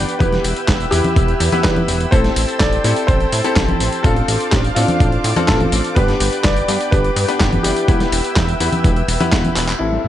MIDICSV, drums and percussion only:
0, 0, Header, 1, 2, 480
1, 0, Start_track
1, 0, Tempo, 480000
1, 204, Time_signature, 4, 2, 24, 8
1, 10080, End_track
2, 0, Start_track
2, 0, Title_t, "Drums"
2, 85, Note_on_c, 9, 42, 51
2, 85, Note_on_c, 9, 54, 28
2, 185, Note_off_c, 9, 42, 0
2, 185, Note_off_c, 9, 54, 0
2, 204, Note_on_c, 9, 36, 125
2, 205, Note_on_c, 9, 42, 51
2, 205, Note_on_c, 9, 54, 42
2, 205, Note_on_c, 9, 63, 66
2, 304, Note_off_c, 9, 36, 0
2, 305, Note_off_c, 9, 42, 0
2, 305, Note_off_c, 9, 54, 0
2, 305, Note_off_c, 9, 63, 0
2, 324, Note_on_c, 9, 38, 39
2, 324, Note_on_c, 9, 42, 26
2, 424, Note_off_c, 9, 38, 0
2, 424, Note_off_c, 9, 42, 0
2, 444, Note_on_c, 9, 46, 103
2, 444, Note_on_c, 9, 54, 74
2, 544, Note_off_c, 9, 46, 0
2, 544, Note_off_c, 9, 54, 0
2, 564, Note_on_c, 9, 42, 52
2, 564, Note_on_c, 9, 54, 30
2, 664, Note_off_c, 9, 42, 0
2, 664, Note_off_c, 9, 54, 0
2, 684, Note_on_c, 9, 36, 113
2, 684, Note_on_c, 9, 38, 120
2, 684, Note_on_c, 9, 39, 103
2, 684, Note_on_c, 9, 42, 49
2, 684, Note_on_c, 9, 54, 42
2, 784, Note_off_c, 9, 36, 0
2, 784, Note_off_c, 9, 38, 0
2, 784, Note_off_c, 9, 39, 0
2, 784, Note_off_c, 9, 42, 0
2, 784, Note_off_c, 9, 54, 0
2, 804, Note_on_c, 9, 42, 26
2, 804, Note_on_c, 9, 54, 28
2, 904, Note_off_c, 9, 42, 0
2, 904, Note_off_c, 9, 54, 0
2, 924, Note_on_c, 9, 46, 92
2, 924, Note_on_c, 9, 54, 71
2, 1024, Note_off_c, 9, 46, 0
2, 1024, Note_off_c, 9, 54, 0
2, 1044, Note_on_c, 9, 42, 52
2, 1044, Note_on_c, 9, 54, 30
2, 1044, Note_on_c, 9, 63, 65
2, 1144, Note_off_c, 9, 42, 0
2, 1144, Note_off_c, 9, 54, 0
2, 1144, Note_off_c, 9, 63, 0
2, 1164, Note_on_c, 9, 36, 120
2, 1164, Note_on_c, 9, 42, 53
2, 1164, Note_on_c, 9, 54, 40
2, 1264, Note_off_c, 9, 36, 0
2, 1264, Note_off_c, 9, 42, 0
2, 1264, Note_off_c, 9, 54, 0
2, 1283, Note_on_c, 9, 42, 27
2, 1383, Note_off_c, 9, 42, 0
2, 1403, Note_on_c, 9, 46, 106
2, 1403, Note_on_c, 9, 54, 72
2, 1503, Note_off_c, 9, 46, 0
2, 1503, Note_off_c, 9, 54, 0
2, 1523, Note_on_c, 9, 42, 51
2, 1523, Note_on_c, 9, 54, 32
2, 1523, Note_on_c, 9, 63, 65
2, 1623, Note_off_c, 9, 42, 0
2, 1623, Note_off_c, 9, 54, 0
2, 1623, Note_off_c, 9, 63, 0
2, 1643, Note_on_c, 9, 38, 127
2, 1643, Note_on_c, 9, 39, 99
2, 1643, Note_on_c, 9, 42, 53
2, 1643, Note_on_c, 9, 54, 41
2, 1644, Note_on_c, 9, 36, 106
2, 1743, Note_off_c, 9, 38, 0
2, 1743, Note_off_c, 9, 39, 0
2, 1743, Note_off_c, 9, 42, 0
2, 1743, Note_off_c, 9, 54, 0
2, 1744, Note_off_c, 9, 36, 0
2, 1763, Note_on_c, 9, 42, 25
2, 1763, Note_on_c, 9, 63, 65
2, 1863, Note_off_c, 9, 42, 0
2, 1863, Note_off_c, 9, 63, 0
2, 1883, Note_on_c, 9, 46, 89
2, 1883, Note_on_c, 9, 54, 70
2, 1983, Note_off_c, 9, 46, 0
2, 1983, Note_off_c, 9, 54, 0
2, 2004, Note_on_c, 9, 42, 49
2, 2004, Note_on_c, 9, 54, 30
2, 2104, Note_off_c, 9, 42, 0
2, 2104, Note_off_c, 9, 54, 0
2, 2124, Note_on_c, 9, 36, 122
2, 2124, Note_on_c, 9, 42, 52
2, 2124, Note_on_c, 9, 54, 43
2, 2224, Note_off_c, 9, 36, 0
2, 2224, Note_off_c, 9, 42, 0
2, 2224, Note_off_c, 9, 54, 0
2, 2244, Note_on_c, 9, 38, 38
2, 2244, Note_on_c, 9, 42, 26
2, 2344, Note_off_c, 9, 38, 0
2, 2344, Note_off_c, 9, 42, 0
2, 2363, Note_on_c, 9, 46, 111
2, 2363, Note_on_c, 9, 54, 76
2, 2463, Note_off_c, 9, 46, 0
2, 2463, Note_off_c, 9, 54, 0
2, 2484, Note_on_c, 9, 42, 51
2, 2484, Note_on_c, 9, 54, 31
2, 2584, Note_off_c, 9, 42, 0
2, 2584, Note_off_c, 9, 54, 0
2, 2604, Note_on_c, 9, 36, 108
2, 2604, Note_on_c, 9, 38, 119
2, 2604, Note_on_c, 9, 39, 97
2, 2604, Note_on_c, 9, 42, 50
2, 2604, Note_on_c, 9, 54, 41
2, 2704, Note_off_c, 9, 36, 0
2, 2704, Note_off_c, 9, 38, 0
2, 2704, Note_off_c, 9, 39, 0
2, 2704, Note_off_c, 9, 42, 0
2, 2704, Note_off_c, 9, 54, 0
2, 2724, Note_on_c, 9, 42, 26
2, 2724, Note_on_c, 9, 54, 29
2, 2824, Note_off_c, 9, 42, 0
2, 2824, Note_off_c, 9, 54, 0
2, 2844, Note_on_c, 9, 46, 96
2, 2844, Note_on_c, 9, 54, 73
2, 2944, Note_off_c, 9, 46, 0
2, 2944, Note_off_c, 9, 54, 0
2, 2964, Note_on_c, 9, 42, 52
2, 2964, Note_on_c, 9, 54, 31
2, 3064, Note_off_c, 9, 42, 0
2, 3064, Note_off_c, 9, 54, 0
2, 3084, Note_on_c, 9, 36, 112
2, 3084, Note_on_c, 9, 42, 51
2, 3084, Note_on_c, 9, 54, 42
2, 3184, Note_off_c, 9, 36, 0
2, 3184, Note_off_c, 9, 42, 0
2, 3184, Note_off_c, 9, 54, 0
2, 3204, Note_on_c, 9, 42, 26
2, 3304, Note_off_c, 9, 42, 0
2, 3324, Note_on_c, 9, 46, 108
2, 3324, Note_on_c, 9, 54, 76
2, 3424, Note_off_c, 9, 46, 0
2, 3424, Note_off_c, 9, 54, 0
2, 3444, Note_on_c, 9, 42, 51
2, 3444, Note_on_c, 9, 54, 31
2, 3544, Note_off_c, 9, 42, 0
2, 3544, Note_off_c, 9, 54, 0
2, 3564, Note_on_c, 9, 36, 108
2, 3564, Note_on_c, 9, 38, 124
2, 3564, Note_on_c, 9, 39, 104
2, 3564, Note_on_c, 9, 42, 51
2, 3564, Note_on_c, 9, 54, 43
2, 3664, Note_off_c, 9, 36, 0
2, 3664, Note_off_c, 9, 38, 0
2, 3664, Note_off_c, 9, 39, 0
2, 3664, Note_off_c, 9, 42, 0
2, 3664, Note_off_c, 9, 54, 0
2, 3684, Note_on_c, 9, 42, 26
2, 3684, Note_on_c, 9, 63, 66
2, 3784, Note_off_c, 9, 42, 0
2, 3784, Note_off_c, 9, 63, 0
2, 3804, Note_on_c, 9, 46, 93
2, 3804, Note_on_c, 9, 54, 73
2, 3904, Note_off_c, 9, 46, 0
2, 3904, Note_off_c, 9, 54, 0
2, 3924, Note_on_c, 9, 42, 49
2, 3924, Note_on_c, 9, 54, 30
2, 4024, Note_off_c, 9, 42, 0
2, 4024, Note_off_c, 9, 54, 0
2, 4044, Note_on_c, 9, 36, 116
2, 4044, Note_on_c, 9, 42, 54
2, 4044, Note_on_c, 9, 54, 43
2, 4143, Note_off_c, 9, 36, 0
2, 4144, Note_off_c, 9, 42, 0
2, 4144, Note_off_c, 9, 54, 0
2, 4164, Note_on_c, 9, 42, 27
2, 4264, Note_off_c, 9, 42, 0
2, 4284, Note_on_c, 9, 46, 112
2, 4284, Note_on_c, 9, 54, 73
2, 4384, Note_off_c, 9, 46, 0
2, 4384, Note_off_c, 9, 54, 0
2, 4404, Note_on_c, 9, 42, 53
2, 4404, Note_on_c, 9, 54, 31
2, 4504, Note_off_c, 9, 42, 0
2, 4504, Note_off_c, 9, 54, 0
2, 4524, Note_on_c, 9, 36, 104
2, 4524, Note_on_c, 9, 38, 110
2, 4524, Note_on_c, 9, 39, 100
2, 4524, Note_on_c, 9, 42, 52
2, 4524, Note_on_c, 9, 54, 43
2, 4624, Note_off_c, 9, 36, 0
2, 4624, Note_off_c, 9, 38, 0
2, 4624, Note_off_c, 9, 39, 0
2, 4624, Note_off_c, 9, 42, 0
2, 4624, Note_off_c, 9, 54, 0
2, 4644, Note_on_c, 9, 42, 27
2, 4644, Note_on_c, 9, 54, 29
2, 4744, Note_off_c, 9, 42, 0
2, 4744, Note_off_c, 9, 54, 0
2, 4764, Note_on_c, 9, 46, 97
2, 4764, Note_on_c, 9, 54, 72
2, 4864, Note_off_c, 9, 46, 0
2, 4864, Note_off_c, 9, 54, 0
2, 4883, Note_on_c, 9, 42, 53
2, 4883, Note_on_c, 9, 54, 32
2, 4883, Note_on_c, 9, 63, 63
2, 4983, Note_off_c, 9, 42, 0
2, 4983, Note_off_c, 9, 54, 0
2, 4983, Note_off_c, 9, 63, 0
2, 5004, Note_on_c, 9, 36, 112
2, 5004, Note_on_c, 9, 42, 52
2, 5004, Note_on_c, 9, 54, 41
2, 5104, Note_off_c, 9, 36, 0
2, 5104, Note_off_c, 9, 42, 0
2, 5104, Note_off_c, 9, 54, 0
2, 5124, Note_on_c, 9, 42, 27
2, 5224, Note_off_c, 9, 42, 0
2, 5243, Note_on_c, 9, 46, 112
2, 5243, Note_on_c, 9, 54, 72
2, 5343, Note_off_c, 9, 46, 0
2, 5343, Note_off_c, 9, 54, 0
2, 5363, Note_on_c, 9, 42, 56
2, 5363, Note_on_c, 9, 54, 31
2, 5363, Note_on_c, 9, 63, 66
2, 5463, Note_off_c, 9, 42, 0
2, 5463, Note_off_c, 9, 54, 0
2, 5463, Note_off_c, 9, 63, 0
2, 5483, Note_on_c, 9, 38, 120
2, 5483, Note_on_c, 9, 39, 101
2, 5483, Note_on_c, 9, 42, 54
2, 5483, Note_on_c, 9, 54, 43
2, 5484, Note_on_c, 9, 36, 100
2, 5583, Note_off_c, 9, 38, 0
2, 5583, Note_off_c, 9, 39, 0
2, 5583, Note_off_c, 9, 42, 0
2, 5583, Note_off_c, 9, 54, 0
2, 5584, Note_off_c, 9, 36, 0
2, 5604, Note_on_c, 9, 42, 26
2, 5604, Note_on_c, 9, 63, 62
2, 5704, Note_off_c, 9, 42, 0
2, 5704, Note_off_c, 9, 63, 0
2, 5723, Note_on_c, 9, 46, 97
2, 5723, Note_on_c, 9, 54, 73
2, 5823, Note_off_c, 9, 46, 0
2, 5823, Note_off_c, 9, 54, 0
2, 5844, Note_on_c, 9, 42, 54
2, 5844, Note_on_c, 9, 54, 30
2, 5944, Note_off_c, 9, 42, 0
2, 5944, Note_off_c, 9, 54, 0
2, 5964, Note_on_c, 9, 36, 114
2, 5964, Note_on_c, 9, 42, 55
2, 5964, Note_on_c, 9, 54, 43
2, 6064, Note_off_c, 9, 36, 0
2, 6064, Note_off_c, 9, 42, 0
2, 6064, Note_off_c, 9, 54, 0
2, 6084, Note_on_c, 9, 38, 35
2, 6084, Note_on_c, 9, 42, 28
2, 6184, Note_off_c, 9, 38, 0
2, 6184, Note_off_c, 9, 42, 0
2, 6204, Note_on_c, 9, 46, 115
2, 6204, Note_on_c, 9, 54, 76
2, 6304, Note_off_c, 9, 46, 0
2, 6304, Note_off_c, 9, 54, 0
2, 6324, Note_on_c, 9, 42, 56
2, 6324, Note_on_c, 9, 54, 30
2, 6424, Note_off_c, 9, 42, 0
2, 6424, Note_off_c, 9, 54, 0
2, 6444, Note_on_c, 9, 36, 101
2, 6444, Note_on_c, 9, 38, 118
2, 6444, Note_on_c, 9, 39, 98
2, 6444, Note_on_c, 9, 42, 53
2, 6444, Note_on_c, 9, 54, 41
2, 6544, Note_off_c, 9, 36, 0
2, 6544, Note_off_c, 9, 38, 0
2, 6544, Note_off_c, 9, 39, 0
2, 6544, Note_off_c, 9, 42, 0
2, 6544, Note_off_c, 9, 54, 0
2, 6565, Note_on_c, 9, 42, 27
2, 6565, Note_on_c, 9, 54, 29
2, 6665, Note_off_c, 9, 42, 0
2, 6665, Note_off_c, 9, 54, 0
2, 6684, Note_on_c, 9, 46, 98
2, 6684, Note_on_c, 9, 54, 72
2, 6784, Note_off_c, 9, 46, 0
2, 6784, Note_off_c, 9, 54, 0
2, 6805, Note_on_c, 9, 42, 54
2, 6805, Note_on_c, 9, 54, 30
2, 6905, Note_off_c, 9, 42, 0
2, 6905, Note_off_c, 9, 54, 0
2, 6924, Note_on_c, 9, 36, 113
2, 6925, Note_on_c, 9, 42, 56
2, 6925, Note_on_c, 9, 54, 42
2, 7024, Note_off_c, 9, 36, 0
2, 7025, Note_off_c, 9, 42, 0
2, 7025, Note_off_c, 9, 54, 0
2, 7045, Note_on_c, 9, 42, 28
2, 7145, Note_off_c, 9, 42, 0
2, 7164, Note_on_c, 9, 46, 110
2, 7164, Note_on_c, 9, 54, 72
2, 7264, Note_off_c, 9, 46, 0
2, 7264, Note_off_c, 9, 54, 0
2, 7285, Note_on_c, 9, 42, 58
2, 7285, Note_on_c, 9, 54, 32
2, 7385, Note_off_c, 9, 42, 0
2, 7385, Note_off_c, 9, 54, 0
2, 7404, Note_on_c, 9, 36, 100
2, 7405, Note_on_c, 9, 38, 120
2, 7405, Note_on_c, 9, 39, 104
2, 7405, Note_on_c, 9, 42, 56
2, 7405, Note_on_c, 9, 54, 42
2, 7504, Note_off_c, 9, 36, 0
2, 7505, Note_off_c, 9, 38, 0
2, 7505, Note_off_c, 9, 39, 0
2, 7505, Note_off_c, 9, 42, 0
2, 7505, Note_off_c, 9, 54, 0
2, 7525, Note_on_c, 9, 42, 27
2, 7525, Note_on_c, 9, 63, 59
2, 7625, Note_off_c, 9, 42, 0
2, 7625, Note_off_c, 9, 63, 0
2, 7644, Note_on_c, 9, 46, 100
2, 7644, Note_on_c, 9, 54, 72
2, 7744, Note_off_c, 9, 46, 0
2, 7744, Note_off_c, 9, 54, 0
2, 7764, Note_on_c, 9, 42, 53
2, 7764, Note_on_c, 9, 54, 31
2, 7864, Note_off_c, 9, 42, 0
2, 7864, Note_off_c, 9, 54, 0
2, 7884, Note_on_c, 9, 36, 117
2, 7884, Note_on_c, 9, 42, 57
2, 7884, Note_on_c, 9, 54, 41
2, 7984, Note_off_c, 9, 36, 0
2, 7984, Note_off_c, 9, 42, 0
2, 7984, Note_off_c, 9, 54, 0
2, 8003, Note_on_c, 9, 38, 37
2, 8003, Note_on_c, 9, 42, 28
2, 8003, Note_on_c, 9, 54, 27
2, 8103, Note_off_c, 9, 38, 0
2, 8103, Note_off_c, 9, 42, 0
2, 8103, Note_off_c, 9, 54, 0
2, 8123, Note_on_c, 9, 46, 114
2, 8123, Note_on_c, 9, 54, 70
2, 8223, Note_off_c, 9, 46, 0
2, 8223, Note_off_c, 9, 54, 0
2, 8244, Note_on_c, 9, 42, 58
2, 8244, Note_on_c, 9, 54, 29
2, 8344, Note_off_c, 9, 42, 0
2, 8344, Note_off_c, 9, 54, 0
2, 8364, Note_on_c, 9, 36, 105
2, 8364, Note_on_c, 9, 38, 116
2, 8364, Note_on_c, 9, 39, 105
2, 8364, Note_on_c, 9, 42, 56
2, 8364, Note_on_c, 9, 54, 39
2, 8464, Note_off_c, 9, 36, 0
2, 8464, Note_off_c, 9, 38, 0
2, 8464, Note_off_c, 9, 39, 0
2, 8464, Note_off_c, 9, 42, 0
2, 8464, Note_off_c, 9, 54, 0
2, 8484, Note_on_c, 9, 42, 28
2, 8484, Note_on_c, 9, 54, 27
2, 8584, Note_off_c, 9, 42, 0
2, 8584, Note_off_c, 9, 54, 0
2, 8604, Note_on_c, 9, 46, 95
2, 8604, Note_on_c, 9, 54, 68
2, 8704, Note_off_c, 9, 46, 0
2, 8704, Note_off_c, 9, 54, 0
2, 8725, Note_on_c, 9, 42, 57
2, 8725, Note_on_c, 9, 54, 28
2, 8725, Note_on_c, 9, 63, 59
2, 8825, Note_off_c, 9, 42, 0
2, 8825, Note_off_c, 9, 54, 0
2, 8825, Note_off_c, 9, 63, 0
2, 8844, Note_on_c, 9, 36, 116
2, 8844, Note_on_c, 9, 42, 58
2, 8844, Note_on_c, 9, 54, 39
2, 8944, Note_off_c, 9, 36, 0
2, 8944, Note_off_c, 9, 42, 0
2, 8944, Note_off_c, 9, 54, 0
2, 8964, Note_on_c, 9, 42, 30
2, 9064, Note_off_c, 9, 42, 0
2, 9084, Note_on_c, 9, 46, 110
2, 9084, Note_on_c, 9, 54, 70
2, 9184, Note_off_c, 9, 46, 0
2, 9184, Note_off_c, 9, 54, 0
2, 9205, Note_on_c, 9, 42, 57
2, 9205, Note_on_c, 9, 54, 30
2, 9205, Note_on_c, 9, 63, 60
2, 9305, Note_off_c, 9, 42, 0
2, 9305, Note_off_c, 9, 54, 0
2, 9305, Note_off_c, 9, 63, 0
2, 9324, Note_on_c, 9, 36, 102
2, 9325, Note_on_c, 9, 38, 118
2, 9325, Note_on_c, 9, 39, 107
2, 9325, Note_on_c, 9, 42, 55
2, 9325, Note_on_c, 9, 54, 41
2, 9424, Note_off_c, 9, 36, 0
2, 9425, Note_off_c, 9, 38, 0
2, 9425, Note_off_c, 9, 39, 0
2, 9425, Note_off_c, 9, 42, 0
2, 9425, Note_off_c, 9, 54, 0
2, 9444, Note_on_c, 9, 42, 28
2, 9444, Note_on_c, 9, 54, 27
2, 9444, Note_on_c, 9, 63, 60
2, 9544, Note_off_c, 9, 42, 0
2, 9544, Note_off_c, 9, 54, 0
2, 9544, Note_off_c, 9, 63, 0
2, 9564, Note_on_c, 9, 39, 88
2, 9564, Note_on_c, 9, 46, 98
2, 9564, Note_on_c, 9, 54, 70
2, 9664, Note_off_c, 9, 39, 0
2, 9664, Note_off_c, 9, 46, 0
2, 9664, Note_off_c, 9, 54, 0
2, 9685, Note_on_c, 9, 39, 96
2, 9685, Note_on_c, 9, 42, 56
2, 9685, Note_on_c, 9, 54, 30
2, 9785, Note_off_c, 9, 39, 0
2, 9785, Note_off_c, 9, 42, 0
2, 9785, Note_off_c, 9, 54, 0
2, 9804, Note_on_c, 9, 42, 52
2, 9804, Note_on_c, 9, 49, 83
2, 9904, Note_off_c, 9, 42, 0
2, 9904, Note_off_c, 9, 49, 0
2, 9925, Note_on_c, 9, 38, 34
2, 9925, Note_on_c, 9, 42, 25
2, 10025, Note_off_c, 9, 38, 0
2, 10025, Note_off_c, 9, 42, 0
2, 10044, Note_on_c, 9, 42, 92
2, 10080, Note_off_c, 9, 42, 0
2, 10080, End_track
0, 0, End_of_file